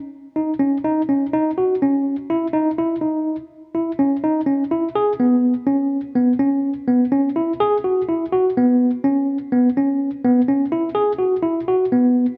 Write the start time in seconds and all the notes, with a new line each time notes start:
0.36 D#4
0.60 C#4
0.84 D#4
1.09 C#4
1.33 D#4
1.58 F#4
1.82 C#4
2.30 E4
2.53 D#4
2.78 E4
3.01 D#4
3.75 E4
3.99 C#4
4.24 D#4
4.46 C#4
4.71 E4
4.95 G#4
5.20 B3
5.67 C#4
6.16 B3
6.39 C#4
6.88 B3
7.12 C#4
7.36 E4
7.60 G#4
7.84 F#4
8.08 E4
8.33 F#4
8.57 B3
9.04 C#4
9.52 B3
9.77 C#4
10.24 B3
10.48 C#4
10.72 E4
10.95 G#4
11.19 F#4
11.43 E4
11.68 F#4
11.92 B3